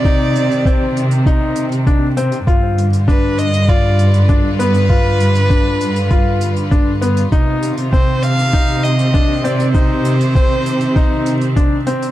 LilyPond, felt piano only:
\new Staff \with { instrumentName = "Felt piano" } { \time 4/4 \key c \minor \tempo 4 = 99 ees'4 c'4 ees'4 d'8 c'8 | f'4 d'4 f'4 d'8 b8 | f'4 d'4 f'4 d'8 b8 | ees'4 c'4 ees'4 d'8 c'8 |
ees'4 c'4 ees'4 d'8 c'8 | }